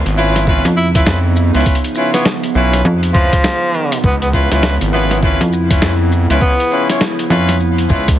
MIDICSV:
0, 0, Header, 1, 7, 480
1, 0, Start_track
1, 0, Tempo, 594059
1, 1342, Time_signature, 4, 2, 24, 8
1, 6618, End_track
2, 0, Start_track
2, 0, Title_t, "Horn section"
2, 0, Program_c, 0, 61
2, 139, Note_on_c, 0, 65, 87
2, 140, Note_on_c, 0, 61, 97
2, 140, Note_on_c, 0, 64, 85
2, 140, Note_on_c, 0, 71, 96
2, 340, Note_off_c, 0, 65, 0
2, 341, Note_off_c, 0, 61, 0
2, 341, Note_off_c, 0, 64, 0
2, 341, Note_off_c, 0, 71, 0
2, 379, Note_on_c, 0, 64, 94
2, 380, Note_on_c, 0, 61, 106
2, 380, Note_on_c, 0, 71, 120
2, 381, Note_on_c, 0, 65, 99
2, 525, Note_off_c, 0, 61, 0
2, 525, Note_off_c, 0, 64, 0
2, 525, Note_off_c, 0, 65, 0
2, 525, Note_off_c, 0, 71, 0
2, 766, Note_on_c, 0, 61, 87
2, 766, Note_on_c, 0, 64, 80
2, 766, Note_on_c, 0, 71, 99
2, 767, Note_on_c, 0, 65, 82
2, 944, Note_off_c, 0, 61, 0
2, 944, Note_off_c, 0, 64, 0
2, 944, Note_off_c, 0, 65, 0
2, 944, Note_off_c, 0, 71, 0
2, 1247, Note_on_c, 0, 64, 82
2, 1247, Note_on_c, 0, 71, 92
2, 1248, Note_on_c, 0, 61, 84
2, 1248, Note_on_c, 0, 65, 77
2, 1424, Note_off_c, 0, 64, 0
2, 1424, Note_off_c, 0, 71, 0
2, 1425, Note_off_c, 0, 61, 0
2, 1425, Note_off_c, 0, 65, 0
2, 1580, Note_on_c, 0, 61, 83
2, 1580, Note_on_c, 0, 64, 75
2, 1581, Note_on_c, 0, 65, 78
2, 1581, Note_on_c, 0, 71, 86
2, 1706, Note_off_c, 0, 61, 0
2, 1706, Note_off_c, 0, 64, 0
2, 1706, Note_off_c, 0, 65, 0
2, 1706, Note_off_c, 0, 71, 0
2, 1727, Note_on_c, 0, 61, 79
2, 1728, Note_on_c, 0, 64, 71
2, 1728, Note_on_c, 0, 65, 71
2, 1728, Note_on_c, 0, 73, 86
2, 1819, Note_off_c, 0, 61, 0
2, 1819, Note_off_c, 0, 65, 0
2, 1820, Note_off_c, 0, 64, 0
2, 1820, Note_off_c, 0, 73, 0
2, 2062, Note_on_c, 0, 64, 85
2, 2062, Note_on_c, 0, 71, 99
2, 2063, Note_on_c, 0, 61, 91
2, 2063, Note_on_c, 0, 65, 85
2, 2262, Note_off_c, 0, 61, 0
2, 2262, Note_off_c, 0, 64, 0
2, 2262, Note_off_c, 0, 65, 0
2, 2262, Note_off_c, 0, 71, 0
2, 2542, Note_on_c, 0, 61, 79
2, 2542, Note_on_c, 0, 64, 74
2, 2542, Note_on_c, 0, 65, 74
2, 2542, Note_on_c, 0, 71, 93
2, 2686, Note_off_c, 0, 61, 0
2, 2686, Note_off_c, 0, 64, 0
2, 2686, Note_off_c, 0, 65, 0
2, 2686, Note_off_c, 0, 71, 0
2, 3501, Note_on_c, 0, 61, 93
2, 3501, Note_on_c, 0, 64, 84
2, 3501, Note_on_c, 0, 65, 86
2, 3501, Note_on_c, 0, 71, 102
2, 3613, Note_off_c, 0, 64, 0
2, 3613, Note_off_c, 0, 65, 0
2, 3613, Note_off_c, 0, 71, 0
2, 3614, Note_off_c, 0, 61, 0
2, 3648, Note_on_c, 0, 61, 83
2, 3648, Note_on_c, 0, 65, 76
2, 3648, Note_on_c, 0, 71, 98
2, 3649, Note_on_c, 0, 64, 73
2, 3825, Note_off_c, 0, 61, 0
2, 3825, Note_off_c, 0, 64, 0
2, 3825, Note_off_c, 0, 65, 0
2, 3825, Note_off_c, 0, 71, 0
2, 3982, Note_on_c, 0, 61, 91
2, 3982, Note_on_c, 0, 64, 83
2, 3982, Note_on_c, 0, 65, 86
2, 3982, Note_on_c, 0, 71, 106
2, 4182, Note_off_c, 0, 61, 0
2, 4182, Note_off_c, 0, 64, 0
2, 4182, Note_off_c, 0, 65, 0
2, 4182, Note_off_c, 0, 71, 0
2, 4220, Note_on_c, 0, 71, 120
2, 4221, Note_on_c, 0, 61, 114
2, 4222, Note_on_c, 0, 64, 100
2, 4222, Note_on_c, 0, 65, 105
2, 4365, Note_off_c, 0, 71, 0
2, 4366, Note_off_c, 0, 61, 0
2, 4366, Note_off_c, 0, 64, 0
2, 4366, Note_off_c, 0, 65, 0
2, 4609, Note_on_c, 0, 61, 91
2, 4610, Note_on_c, 0, 64, 86
2, 4610, Note_on_c, 0, 65, 81
2, 4610, Note_on_c, 0, 71, 95
2, 4785, Note_off_c, 0, 61, 0
2, 4786, Note_off_c, 0, 64, 0
2, 4786, Note_off_c, 0, 65, 0
2, 4786, Note_off_c, 0, 71, 0
2, 5088, Note_on_c, 0, 65, 74
2, 5088, Note_on_c, 0, 71, 100
2, 5089, Note_on_c, 0, 61, 88
2, 5089, Note_on_c, 0, 64, 82
2, 5265, Note_off_c, 0, 61, 0
2, 5265, Note_off_c, 0, 64, 0
2, 5265, Note_off_c, 0, 65, 0
2, 5265, Note_off_c, 0, 71, 0
2, 5421, Note_on_c, 0, 61, 85
2, 5421, Note_on_c, 0, 65, 75
2, 5422, Note_on_c, 0, 64, 75
2, 5423, Note_on_c, 0, 71, 88
2, 5546, Note_off_c, 0, 61, 0
2, 5547, Note_off_c, 0, 64, 0
2, 5547, Note_off_c, 0, 65, 0
2, 5547, Note_off_c, 0, 71, 0
2, 5566, Note_on_c, 0, 61, 79
2, 5566, Note_on_c, 0, 65, 68
2, 5567, Note_on_c, 0, 64, 74
2, 5567, Note_on_c, 0, 73, 87
2, 5659, Note_off_c, 0, 61, 0
2, 5659, Note_off_c, 0, 64, 0
2, 5659, Note_off_c, 0, 65, 0
2, 5659, Note_off_c, 0, 73, 0
2, 5902, Note_on_c, 0, 61, 98
2, 5902, Note_on_c, 0, 64, 84
2, 5903, Note_on_c, 0, 65, 87
2, 5903, Note_on_c, 0, 71, 107
2, 6102, Note_off_c, 0, 61, 0
2, 6102, Note_off_c, 0, 64, 0
2, 6102, Note_off_c, 0, 65, 0
2, 6102, Note_off_c, 0, 71, 0
2, 6382, Note_on_c, 0, 61, 77
2, 6382, Note_on_c, 0, 65, 77
2, 6383, Note_on_c, 0, 64, 73
2, 6383, Note_on_c, 0, 71, 91
2, 6526, Note_off_c, 0, 61, 0
2, 6526, Note_off_c, 0, 65, 0
2, 6526, Note_off_c, 0, 71, 0
2, 6527, Note_off_c, 0, 64, 0
2, 6618, End_track
3, 0, Start_track
3, 0, Title_t, "Ambient pad"
3, 0, Program_c, 1, 92
3, 0, Note_on_c, 1, 49, 88
3, 0, Note_on_c, 1, 53, 79
3, 0, Note_on_c, 1, 59, 80
3, 0, Note_on_c, 1, 63, 91
3, 3259, Note_off_c, 1, 63, 0
3, 3261, Note_on_c, 1, 64, 93
3, 6618, Note_off_c, 1, 49, 0
3, 6618, Note_off_c, 1, 53, 0
3, 6618, Note_off_c, 1, 59, 0
3, 6618, Note_off_c, 1, 64, 0
3, 6618, End_track
4, 0, Start_track
4, 0, Title_t, "Tenor saxophone"
4, 0, Program_c, 2, 66
4, 620, Note_on_c, 2, 64, 97
4, 715, Note_off_c, 2, 64, 0
4, 770, Note_on_c, 2, 64, 78
4, 829, Note_off_c, 2, 64, 0
4, 1727, Note_on_c, 2, 59, 92
4, 1836, Note_off_c, 2, 59, 0
4, 2536, Note_on_c, 2, 53, 104
4, 3222, Note_off_c, 2, 53, 0
4, 3260, Note_on_c, 2, 59, 93
4, 3355, Note_off_c, 2, 59, 0
4, 3408, Note_on_c, 2, 59, 82
4, 3468, Note_off_c, 2, 59, 0
4, 3982, Note_on_c, 2, 59, 89
4, 4076, Note_off_c, 2, 59, 0
4, 4129, Note_on_c, 2, 59, 76
4, 4189, Note_off_c, 2, 59, 0
4, 5184, Note_on_c, 2, 59, 101
4, 5570, Note_off_c, 2, 59, 0
4, 6618, End_track
5, 0, Start_track
5, 0, Title_t, "FM bass"
5, 0, Program_c, 3, 39
5, 525, Note_on_c, 3, 41, 101
5, 845, Note_off_c, 3, 41, 0
5, 2302, Note_on_c, 3, 41, 99
5, 2666, Note_off_c, 3, 41, 0
5, 4370, Note_on_c, 3, 41, 98
5, 4688, Note_off_c, 3, 41, 0
5, 5900, Note_on_c, 3, 41, 89
5, 6366, Note_off_c, 3, 41, 0
5, 6618, End_track
6, 0, Start_track
6, 0, Title_t, "Analog synth bass"
6, 0, Program_c, 4, 38
6, 47, Note_on_c, 4, 32, 103
6, 504, Note_off_c, 4, 32, 0
6, 861, Note_on_c, 4, 41, 104
6, 1225, Note_off_c, 4, 41, 0
6, 1247, Note_on_c, 4, 37, 93
6, 1326, Note_off_c, 4, 37, 0
6, 2062, Note_on_c, 4, 35, 96
6, 2287, Note_off_c, 4, 35, 0
6, 3263, Note_on_c, 4, 37, 96
6, 3626, Note_off_c, 4, 37, 0
6, 3649, Note_on_c, 4, 37, 107
6, 3865, Note_off_c, 4, 37, 0
6, 3890, Note_on_c, 4, 32, 105
6, 4346, Note_off_c, 4, 32, 0
6, 4703, Note_on_c, 4, 41, 93
6, 5066, Note_off_c, 4, 41, 0
6, 5090, Note_on_c, 4, 37, 103
6, 5168, Note_off_c, 4, 37, 0
6, 6382, Note_on_c, 4, 37, 92
6, 6618, Note_off_c, 4, 37, 0
6, 6618, End_track
7, 0, Start_track
7, 0, Title_t, "Drums"
7, 49, Note_on_c, 9, 42, 57
7, 55, Note_on_c, 9, 70, 35
7, 130, Note_off_c, 9, 42, 0
7, 136, Note_off_c, 9, 70, 0
7, 139, Note_on_c, 9, 70, 104
7, 220, Note_off_c, 9, 70, 0
7, 290, Note_on_c, 9, 40, 50
7, 290, Note_on_c, 9, 42, 68
7, 293, Note_on_c, 9, 70, 44
7, 370, Note_off_c, 9, 40, 0
7, 370, Note_off_c, 9, 42, 0
7, 374, Note_off_c, 9, 70, 0
7, 381, Note_on_c, 9, 36, 107
7, 386, Note_on_c, 9, 70, 56
7, 461, Note_off_c, 9, 36, 0
7, 467, Note_off_c, 9, 70, 0
7, 529, Note_on_c, 9, 42, 57
7, 610, Note_off_c, 9, 42, 0
7, 625, Note_on_c, 9, 70, 91
7, 706, Note_off_c, 9, 70, 0
7, 762, Note_on_c, 9, 70, 39
7, 768, Note_on_c, 9, 36, 116
7, 768, Note_on_c, 9, 42, 66
7, 843, Note_off_c, 9, 70, 0
7, 849, Note_off_c, 9, 36, 0
7, 849, Note_off_c, 9, 42, 0
7, 859, Note_on_c, 9, 70, 51
7, 861, Note_on_c, 9, 38, 126
7, 940, Note_off_c, 9, 70, 0
7, 942, Note_off_c, 9, 38, 0
7, 1100, Note_on_c, 9, 70, 91
7, 1181, Note_off_c, 9, 70, 0
7, 1245, Note_on_c, 9, 70, 42
7, 1249, Note_on_c, 9, 42, 32
7, 1296, Note_off_c, 9, 42, 0
7, 1296, Note_on_c, 9, 42, 38
7, 1326, Note_off_c, 9, 70, 0
7, 1340, Note_on_c, 9, 70, 49
7, 1342, Note_off_c, 9, 42, 0
7, 1342, Note_on_c, 9, 36, 122
7, 1342, Note_on_c, 9, 42, 47
7, 1416, Note_off_c, 9, 42, 0
7, 1416, Note_on_c, 9, 42, 57
7, 1421, Note_off_c, 9, 70, 0
7, 1422, Note_off_c, 9, 36, 0
7, 1490, Note_off_c, 9, 42, 0
7, 1490, Note_on_c, 9, 42, 37
7, 1571, Note_off_c, 9, 42, 0
7, 1576, Note_on_c, 9, 70, 89
7, 1657, Note_off_c, 9, 70, 0
7, 1716, Note_on_c, 9, 70, 39
7, 1729, Note_on_c, 9, 40, 51
7, 1729, Note_on_c, 9, 42, 62
7, 1797, Note_off_c, 9, 70, 0
7, 1809, Note_off_c, 9, 40, 0
7, 1809, Note_off_c, 9, 42, 0
7, 1819, Note_on_c, 9, 70, 51
7, 1822, Note_on_c, 9, 38, 124
7, 1900, Note_off_c, 9, 70, 0
7, 1903, Note_off_c, 9, 38, 0
7, 1966, Note_on_c, 9, 70, 40
7, 1968, Note_on_c, 9, 42, 53
7, 2047, Note_off_c, 9, 70, 0
7, 2049, Note_off_c, 9, 42, 0
7, 2059, Note_on_c, 9, 70, 100
7, 2140, Note_off_c, 9, 70, 0
7, 2208, Note_on_c, 9, 70, 42
7, 2209, Note_on_c, 9, 40, 52
7, 2209, Note_on_c, 9, 42, 66
7, 2289, Note_off_c, 9, 70, 0
7, 2290, Note_off_c, 9, 40, 0
7, 2290, Note_off_c, 9, 42, 0
7, 2301, Note_on_c, 9, 70, 56
7, 2382, Note_off_c, 9, 70, 0
7, 2448, Note_on_c, 9, 42, 56
7, 2448, Note_on_c, 9, 70, 35
7, 2528, Note_off_c, 9, 70, 0
7, 2529, Note_off_c, 9, 42, 0
7, 2542, Note_on_c, 9, 36, 113
7, 2546, Note_on_c, 9, 70, 93
7, 2623, Note_off_c, 9, 36, 0
7, 2626, Note_off_c, 9, 70, 0
7, 2689, Note_on_c, 9, 36, 110
7, 2689, Note_on_c, 9, 42, 63
7, 2689, Note_on_c, 9, 70, 38
7, 2770, Note_off_c, 9, 36, 0
7, 2770, Note_off_c, 9, 42, 0
7, 2770, Note_off_c, 9, 70, 0
7, 2780, Note_on_c, 9, 70, 51
7, 2781, Note_on_c, 9, 38, 119
7, 2860, Note_off_c, 9, 70, 0
7, 2862, Note_off_c, 9, 38, 0
7, 3022, Note_on_c, 9, 70, 94
7, 3103, Note_off_c, 9, 70, 0
7, 3168, Note_on_c, 9, 42, 67
7, 3168, Note_on_c, 9, 70, 44
7, 3249, Note_off_c, 9, 42, 0
7, 3249, Note_off_c, 9, 70, 0
7, 3262, Note_on_c, 9, 70, 52
7, 3263, Note_on_c, 9, 36, 120
7, 3343, Note_off_c, 9, 70, 0
7, 3344, Note_off_c, 9, 36, 0
7, 3410, Note_on_c, 9, 42, 36
7, 3490, Note_off_c, 9, 42, 0
7, 3502, Note_on_c, 9, 36, 64
7, 3503, Note_on_c, 9, 70, 104
7, 3583, Note_off_c, 9, 36, 0
7, 3584, Note_off_c, 9, 70, 0
7, 3648, Note_on_c, 9, 40, 51
7, 3648, Note_on_c, 9, 42, 63
7, 3652, Note_on_c, 9, 70, 37
7, 3729, Note_off_c, 9, 40, 0
7, 3729, Note_off_c, 9, 42, 0
7, 3733, Note_off_c, 9, 70, 0
7, 3741, Note_on_c, 9, 38, 122
7, 3746, Note_on_c, 9, 70, 53
7, 3822, Note_off_c, 9, 38, 0
7, 3827, Note_off_c, 9, 70, 0
7, 3889, Note_on_c, 9, 42, 52
7, 3895, Note_on_c, 9, 70, 41
7, 3970, Note_off_c, 9, 42, 0
7, 3976, Note_off_c, 9, 70, 0
7, 3979, Note_on_c, 9, 70, 88
7, 4060, Note_off_c, 9, 70, 0
7, 4130, Note_on_c, 9, 40, 50
7, 4130, Note_on_c, 9, 42, 63
7, 4132, Note_on_c, 9, 70, 38
7, 4210, Note_off_c, 9, 40, 0
7, 4210, Note_off_c, 9, 42, 0
7, 4213, Note_off_c, 9, 70, 0
7, 4223, Note_on_c, 9, 36, 114
7, 4225, Note_on_c, 9, 70, 58
7, 4303, Note_off_c, 9, 36, 0
7, 4306, Note_off_c, 9, 70, 0
7, 4370, Note_on_c, 9, 42, 52
7, 4451, Note_off_c, 9, 42, 0
7, 4468, Note_on_c, 9, 70, 88
7, 4549, Note_off_c, 9, 70, 0
7, 4610, Note_on_c, 9, 36, 109
7, 4611, Note_on_c, 9, 42, 66
7, 4613, Note_on_c, 9, 70, 36
7, 4691, Note_off_c, 9, 36, 0
7, 4691, Note_off_c, 9, 42, 0
7, 4693, Note_off_c, 9, 70, 0
7, 4703, Note_on_c, 9, 38, 127
7, 4706, Note_on_c, 9, 70, 50
7, 4783, Note_off_c, 9, 38, 0
7, 4786, Note_off_c, 9, 70, 0
7, 4946, Note_on_c, 9, 70, 84
7, 5027, Note_off_c, 9, 70, 0
7, 5092, Note_on_c, 9, 42, 66
7, 5092, Note_on_c, 9, 70, 39
7, 5173, Note_off_c, 9, 42, 0
7, 5173, Note_off_c, 9, 70, 0
7, 5183, Note_on_c, 9, 36, 116
7, 5187, Note_on_c, 9, 70, 52
7, 5263, Note_off_c, 9, 36, 0
7, 5268, Note_off_c, 9, 70, 0
7, 5332, Note_on_c, 9, 42, 36
7, 5413, Note_off_c, 9, 42, 0
7, 5424, Note_on_c, 9, 70, 93
7, 5505, Note_off_c, 9, 70, 0
7, 5571, Note_on_c, 9, 40, 55
7, 5571, Note_on_c, 9, 42, 60
7, 5575, Note_on_c, 9, 70, 44
7, 5652, Note_off_c, 9, 40, 0
7, 5652, Note_off_c, 9, 42, 0
7, 5656, Note_off_c, 9, 70, 0
7, 5660, Note_on_c, 9, 70, 52
7, 5663, Note_on_c, 9, 38, 117
7, 5741, Note_off_c, 9, 70, 0
7, 5744, Note_off_c, 9, 38, 0
7, 5810, Note_on_c, 9, 42, 47
7, 5814, Note_on_c, 9, 70, 34
7, 5891, Note_off_c, 9, 42, 0
7, 5895, Note_off_c, 9, 70, 0
7, 5905, Note_on_c, 9, 70, 87
7, 5986, Note_off_c, 9, 70, 0
7, 6050, Note_on_c, 9, 40, 57
7, 6050, Note_on_c, 9, 42, 65
7, 6056, Note_on_c, 9, 70, 35
7, 6131, Note_off_c, 9, 40, 0
7, 6131, Note_off_c, 9, 42, 0
7, 6136, Note_off_c, 9, 70, 0
7, 6142, Note_on_c, 9, 70, 53
7, 6223, Note_off_c, 9, 70, 0
7, 6290, Note_on_c, 9, 42, 53
7, 6291, Note_on_c, 9, 70, 38
7, 6371, Note_off_c, 9, 42, 0
7, 6372, Note_off_c, 9, 70, 0
7, 6379, Note_on_c, 9, 70, 91
7, 6383, Note_on_c, 9, 36, 100
7, 6460, Note_off_c, 9, 70, 0
7, 6464, Note_off_c, 9, 36, 0
7, 6528, Note_on_c, 9, 70, 37
7, 6529, Note_on_c, 9, 42, 66
7, 6530, Note_on_c, 9, 36, 106
7, 6609, Note_off_c, 9, 70, 0
7, 6610, Note_off_c, 9, 36, 0
7, 6610, Note_off_c, 9, 42, 0
7, 6618, End_track
0, 0, End_of_file